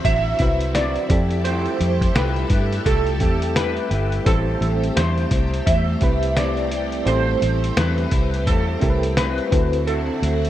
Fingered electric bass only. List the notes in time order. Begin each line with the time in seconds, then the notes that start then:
0.05 A1
0.40 C2
1.10 F2
1.80 F2
2.15 C2
2.50 G2
2.86 C2
3.21 E2
3.91 G1
4.26 A1
4.61 A1
4.96 E2
5.31 C2
5.67 E2
6.02 C2
7.06 A1
7.42 A1
7.77 E2
8.12 C2
8.47 E2
8.82 C2
9.52 D2
10.22 D2